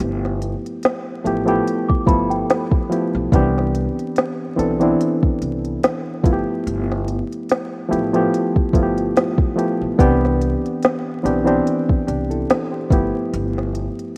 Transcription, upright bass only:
0.00 0.53 G1 loud
1.25 1.59 A1 medium
2.08 2.42 G1 medium
3.15 3.30 B1 loud
3.33 3.86 C2 loud
4.59 4.93 B1 medium
5.42 5.76 C2 medium
6.24 6.43 G1 medium
6.67 7.20 G1 loud
7.92 8.26 A1 medium
8.74 9.09 G1 medium
9.82 9.97 B1 medium
10.00 10.53 C2 loud
11.25 11.59 B1 medium
12.08 12.42 C2 medium
12.91 13.10 G1 medium
13.34 13.87 G1 loud

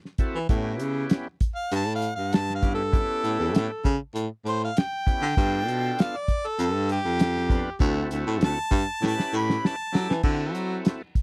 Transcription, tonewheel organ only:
0.19 0.39 C4 medium
0.19 0.39 E4 medium
0.19 0.39 F#4 medium
0.19 0.39 A4 medium
0.49 1.28 B3 medium
0.49 1.28 C#4 medium
0.49 1.28 E4 medium
0.49 1.28 G4 medium
2.62 2.82 B3 medium
2.62 2.83 C#4 medium
2.62 2.83 E4 medium
2.62 2.83 G4 medium
2.92 3.71 B3 medium
2.92 3.71 C#4 medium
2.92 3.71 E4 medium
2.92 3.72 G4 medium
5.06 5.26 B3 medium
5.06 5.26 C#4 medium
5.06 5.26 E4 medium
5.06 5.26 G4 medium
5.37 6.15 B3 medium
5.37 6.15 D4 medium
5.37 6.16 F4 medium
5.37 6.16 A4 medium
7.49 7.70 B3 medium
7.49 7.70 D4 medium
7.49 7.70 F4 medium
7.49 7.70 B4 medium
7.80 8.59 C4 medium
7.80 8.59 E4 medium
7.80 8.59 F#4 medium
7.80 8.59 A4 loud
9.02 9.75 C#4 medium
9.02 9.76 E4 medium
9.02 9.76 G4 medium
9.02 9.76 B4 medium
9.92 10.13 C#4 medium
9.92 10.13 E4 medium
9.92 10.13 G4 medium
9.92 10.13 A4 medium
10.23 11.02 C4 medium
10.23 11.02 E4 medium
10.23 11.02 F#4 medium
10.23 11.03 A4 medium

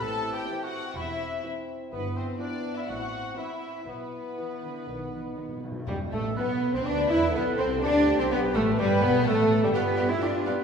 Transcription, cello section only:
0.01 0.39 A2 medium
0.96 1.35 E2 medium
1.93 2.31 G2 medium
2.89 3.27 A2 medium
3.87 4.27 B2 medium
4.38 4.61 E3 medium
4.62 4.88 D3 medium
4.87 5.13 D#3 medium
5.12 5.20 E3 medium
5.37 5.45 D#3 medium
5.63 5.87 B2 soft
5.87 5.95 G3 medium
6.12 6.20 A3 medium
6.37 6.73 B3 loud
6.74 6.79 C4 medium
6.86 7.10 D4 loud
7.10 7.34 E4 loud
7.35 7.58 B3 loud
7.59 7.82 C4 loud
7.83 8.19 D4 loud
8.19 8.24 C4 loud
8.31 8.39 B3 loud
8.55 8.63 A3 loud
8.79 9.02 G3 loud
9.03 9.27 B3 loud
9.27 9.63 A3 loud
9.63 9.75 G3 medium
9.74 10.10 B3 loud
10.11 10.22 E4 loud
10.22 10.46 D4 loud
10.46 10.64 B3 loud

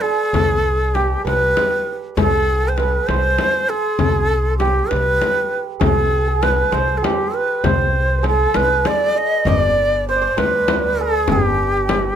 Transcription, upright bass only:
0.33 1.14 C2 medium
1.25 1.52 C2 medium
2.17 2.97 C2 medium
3.09 3.35 C2 medium
3.99 4.79 C2 medium
4.91 5.18 C2 medium
5.81 6.62 C2 medium
6.72 6.99 C2 medium
7.64 8.44 C2 medium
8.55 8.82 C2 medium
9.45 10.26 G1 loud
10.37 11.31 D2 medium
11.29 12.09 G1 medium

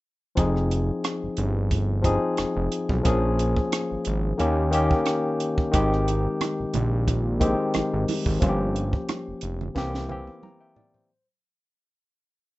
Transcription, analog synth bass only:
0.37 0.91 F1 medium
1.23 1.29 G1 soft
1.38 2.19 G1 medium
2.39 2.46 F1 soft
2.56 2.69 F1 medium
2.90 3.02 B1 medium
3.06 3.59 A#1 loud
3.92 3.97 G#1 soft
4.07 4.33 G#1 medium
4.40 4.94 D#2 loud
5.74 6.28 G#1 loud
6.60 6.66 A#1 soft
6.75 7.56 A#1 medium
7.75 7.82 G#1 soft
7.93 8.06 G#1 medium
8.26 8.39 G#1 medium
8.42 8.96 G1 loud
9.28 9.34 F1 soft
9.43 9.70 F1 medium
9.76 10.30 C2 loud

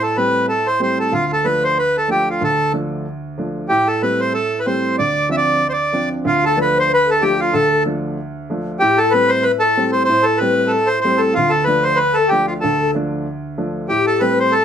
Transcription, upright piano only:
0.00 1.09 A2 medium
0.17 0.48 G3 soft
0.17 0.48 A3 soft
0.17 0.48 C4 soft
0.79 1.11 G3 soft
0.79 1.11 A3 soft
0.79 1.11 C4 soft
1.12 2.37 D2 medium
1.44 1.76 F3 soft
1.44 1.76 A3 soft
1.44 1.76 D4 medium
2.08 2.40 F3 soft
2.08 2.40 A3 soft
2.08 2.40 D4 soft
2.41 3.66 D2 medium
2.73 3.04 F3 soft
2.73 3.05 A3 soft
2.73 3.05 D4 soft
3.38 3.69 F3 soft
3.38 3.69 A3 soft
3.38 3.69 D4 soft
3.70 4.94 A2 medium
4.02 4.33 G3 soft
4.02 4.33 A3 soft
4.02 4.33 C4 soft
4.66 4.97 G3 soft
4.66 4.97 A3 soft
4.66 4.97 C4 medium
4.99 6.23 D2 medium
5.29 5.61 F3 soft
5.29 5.61 C4 soft
5.29 5.61 D4 soft
5.93 6.24 F3 soft
5.93 6.25 C4 soft
5.93 6.25 D4 soft
6.25 7.49 D2 medium
6.56 6.88 F3 soft
6.56 6.88 A3 soft
6.56 6.89 D4 soft
7.22 7.53 F3 soft
7.22 7.53 A3 soft
7.22 7.53 D4 soft
7.54 8.78 D2 medium
7.85 8.17 F3 soft
7.85 8.17 A3 soft
7.85 8.17 D4 soft
8.50 8.81 F3 soft
8.50 8.81 A3 soft
8.50 8.81 D4 soft
8.82 10.05 A2 medium
9.13 9.44 G3 soft
9.13 9.44 A3 soft
9.13 9.45 C4 medium
9.77 10.08 G3 soft
9.77 10.08 A3 soft
9.77 10.08 C4 medium
10.09 11.32 A2 medium
10.41 10.71 G3 soft
10.41 10.71 A3 soft
10.41 10.72 C4 soft
11.04 11.35 G3 soft
11.04 11.35 A3 soft
11.04 11.35 C4 soft
11.37 12.59 D2 medium
11.67 11.98 F3 soft
11.67 11.98 A3 soft
11.67 11.99 D4 medium
12.31 12.62 F3 soft
12.31 12.62 A3 soft
12.31 12.62 D4 soft
12.64 13.86 D2 medium
12.94 13.25 F3 soft
12.94 13.25 A3 soft
12.94 13.26 D4 medium
13.58 13.88 F3 soft
13.58 13.89 A3 soft
13.58 13.89 D4 soft
13.90 14.65 A2 medium
14.21 14.52 G3 medium
14.21 14.52 A3 soft
14.21 14.52 C4 medium

